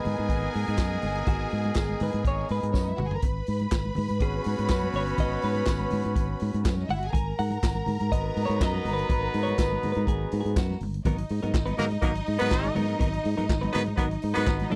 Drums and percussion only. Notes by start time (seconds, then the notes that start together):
0.05 open hi-hat, low conga
0.17 closed hi-hat, high conga
0.29 kick, closed hi-hat
0.42 muted conga
0.53 open hi-hat
0.67 closed hi-hat
0.78 kick, snare, clap, closed hi-hat, tambourine, muted conga
0.92 high conga
1.02 open hi-hat, high conga, low conga
1.15 closed hi-hat
1.26 kick, closed hi-hat, muted conga, low conga
1.41 muted conga
1.50 open hi-hat
1.64 closed hi-hat, high conga
1.74 kick, snare, clap, closed hi-hat, tambourine
1.89 muted conga, high conga
2.00 open hi-hat, low conga
2.13 closed hi-hat, high conga
2.25 kick, closed hi-hat, muted conga
2.39 muted conga
2.49 open hi-hat
2.63 closed hi-hat
2.74 kick, snare, tambourine, muted conga
2.88 muted conga, high conga
2.98 mid tom, high conga, low conga
3.11 floor tom
3.22 kick, closed hi-hat, muted conga, low conga
3.47 open hi-hat
3.60 closed hi-hat, high conga
3.71 kick, snare, clap, closed hi-hat, tambourine
3.85 muted conga, high conga
3.95 open hi-hat, low conga
4.08 closed hi-hat, high conga
4.20 kick, closed hi-hat, muted conga
4.44 open hi-hat
4.58 closed hi-hat
4.69 kick, snare, clap, closed hi-hat, tambourine
4.82 muted conga, high conga
4.93 open hi-hat, high conga, low conga
5.07 closed hi-hat
5.18 kick, closed hi-hat, low conga
5.31 muted conga
5.42 open hi-hat
5.54 closed hi-hat, high conga
5.65 kick, snare, clap, closed hi-hat, tambourine
5.79 muted conga, high conga
5.90 open hi-hat, low conga
6.03 closed hi-hat, high conga
6.16 kick, closed hi-hat
6.28 muted conga
6.40 open hi-hat
6.54 closed hi-hat
6.64 kick, snare, clap, closed hi-hat, tambourine, muted conga
6.77 snare, high conga
6.89 open hi-hat, high conga, low conga
7.03 closed hi-hat
7.13 kick, closed hi-hat, muted conga, low conga
7.25 muted conga
7.39 open hi-hat
7.51 closed hi-hat, high conga
7.62 kick, snare, clap, closed hi-hat, tambourine
7.75 high conga
7.86 open hi-hat, low conga
8.00 closed hi-hat, high conga
8.11 kick, closed hi-hat, muted conga
8.36 open hi-hat
8.51 closed hi-hat
8.61 kick, snare, clap, closed hi-hat, tambourine, muted conga
8.73 snare, muted conga, high conga
8.85 open hi-hat, high conga, low conga
8.98 closed hi-hat
9.09 kick, closed hi-hat, low conga
9.34 open hi-hat
9.47 closed hi-hat, high conga
9.58 kick, snare, clap, closed hi-hat, tambourine, muted conga
9.73 muted conga, high conga
9.83 open hi-hat, low conga
9.95 closed hi-hat, high conga
10.07 kick, closed hi-hat, high conga
10.22 muted conga
10.31 open hi-hat
10.46 closed hi-hat
10.56 kick, snare, clap, closed hi-hat, tambourine, muted conga
10.71 snare, high conga
10.80 open hi-hat, high conga, low conga
10.94 closed hi-hat
11.05 kick, closed hi-hat, muted conga, low conga
11.18 closed hi-hat, muted conga
11.29 open hi-hat
11.43 closed hi-hat, high conga
11.54 kick, snare, clap, muted conga
11.67 closed hi-hat, high conga
11.79 open hi-hat, low conga
11.91 closed hi-hat, high conga
12.02 kick, closed hi-hat
12.15 closed hi-hat
12.26 open hi-hat
12.41 closed hi-hat
12.51 kick, snare, clap
12.64 closed hi-hat, high conga
12.75 open hi-hat, high conga, low conga
12.89 closed hi-hat
13.00 kick, closed hi-hat, muted conga, low conga
13.13 closed hi-hat, muted conga
13.25 open hi-hat
13.38 closed hi-hat, high conga
13.49 kick, snare, clap, muted conga
13.63 closed hi-hat, muted conga, high conga
13.74 open hi-hat, low conga
13.86 closed hi-hat, high conga
13.98 kick, closed hi-hat
14.11 closed hi-hat
14.22 open hi-hat
14.36 closed hi-hat
14.47 kick, snare, clap
14.60 snare, closed hi-hat, muted conga, high conga
14.71 open hi-hat, high conga, low conga